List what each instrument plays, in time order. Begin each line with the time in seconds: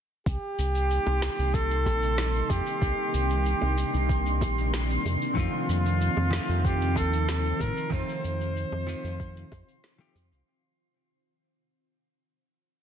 0.26 analog synth bass C2, ambient pad C3 D#3 G3 A#3 D#4, flugelhorn G4, synth texture C6, kick, shaker
0.58 analog synth bass C2, shaker
0.75 shaker
0.91 shaker
1.06 analog synth bass C2, high bongo
1.22 snare, shaker
1.39 analog synth bass C2, shaker
1.54 flugelhorn A4, kick, shaker
1.71 shaker
1.86 analog synth bass A#1, kick, high bongo, shaker
2.03 shaker
2.18 snare, shaker
2.34 shaker
2.50 analog synth bass F2, flugelhorn G4, kick, high bongo, shaker
2.66 shaker
2.82 analog synth bass C2, ambient pad D4, kick, shaker
3.14 analog synth bass C2, shaker
3.30 shaker
3.46 shaker
3.62 analog synth bass C2, high bongo
3.78 shaker
3.94 analog synth bass C2, shaker
4.09 kick, shaker
4.26 shaker
4.41 analog synth bass A#1, kick, high bongo, shaker
4.58 shaker
4.74 snare, shaker
4.90 shaker
5.05 analog synth bass F2, high bongo, shaker
5.22 shaker
5.35 analog synth bass F2, hollow-body jazz guitar D#3 F3 A3 C4, ambient pad F3 C4 D#4, flugelhorn F4, kick, shaker
5.39 hollow-body jazz guitar F4
5.69 analog synth bass F2, shaker
5.86 shaker
6.01 shaker
6.17 analog synth bass F2, high bongo
6.30 hollow-body jazz guitar D#3 F3 A3 C4, snare, shaker
6.35 hollow-body jazz guitar F4
6.49 analog synth bass F2, shaker
6.65 flugelhorn G4, kick, shaker
6.82 shaker
6.96 analog synth bass D#2, flugelhorn A4, kick, high bongo, shaker
7.13 shaker
7.29 snare, shaker
7.45 shaker
7.59 analog synth bass A2, flugelhorn A#4, kick, high bongo, shaker
7.77 shaker
7.90 analog synth bass F2, hollow-body jazz guitar D#3 F3 A3 C4, ambient pad F4, flugelhorn C5, kick, shaker
7.95 hollow-body jazz guitar F4
8.09 shaker
8.24 analog synth bass F2, shaker
8.41 shaker
8.57 shaker
8.72 analog synth bass F2, high bongo
8.87 hollow-body jazz guitar D#3 F3 A3 C4 F4, shaker
9.04 analog synth bass F2, shaker
9.20 kick, shaker
9.37 shaker
9.52 analog synth bass F2, kick, high bongo, shaker
9.68 shaker
9.84 snare, shaker
9.98 hollow-body jazz guitar D#3 F3 A3 C4 G4, shaker
10.15 analog synth bass F2, high bongo, shaker
10.32 analog synth bass C2, shaker